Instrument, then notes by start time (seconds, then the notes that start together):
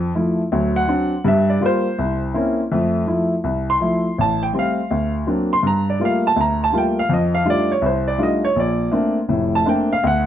grand piano
Already playing: F2
0.15 F3 A3 E4
0.52 D2 F#3
0.76 F#5
0.88 F#3 C4 D4
1.24 G2 G3 E5
1.50 D5
1.61 G3 A#3 F4
1.66 C5
1.99 C2
2.34 A#3 C4 C#4 E4
2.72 F2 A3
3.07 F3 A3 E4
3.44 C2
3.70 C6
3.81 F3 A3 E4
4.18 A1 A5
4.43 G5
4.54 G3 A3 C4
4.59 F5
4.91 D2
5.27 F#3 A#3 C4 D4
5.53 C6
5.63 G2
5.67 A#5
5.90 D5
6.00 G3 A3 A#3 F4
6.05 F5
6.27 A5
6.36 D2
6.41 A#5
6.64 A5
6.73 G3 A3 A#3 F4
6.78 G5
6.99 F5
7.09 F2
7.14 D#5
7.35 F5
7.45 G3 A3 D4 D#4 F4
7.50 D5
7.72 C#5
7.82 C2
7.86 C5
8.08 D5
8.18 G3 A3 D4 D#4 F4
8.23 D#5
8.45 C#5
8.56 A#1 D5
8.91 A3 A#3 C4 D4
9.29 F1 A2
9.55 A5
9.66 A3 A#3 C4 D4 G5
9.93 F5
10.04 D2 F#5